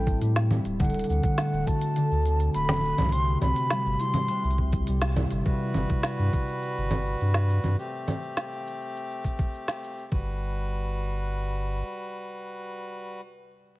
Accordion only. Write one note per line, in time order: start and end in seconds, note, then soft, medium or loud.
5.45 7.76 G3 medium
5.45 7.76 F#4 medium
5.45 7.76 B4 medium
7.78 10.09 A3 medium
7.78 10.09 C4 medium
7.78 10.09 G4 medium
10.12 13.21 G3 medium
10.12 13.21 F#4 medium
10.12 13.21 B4 medium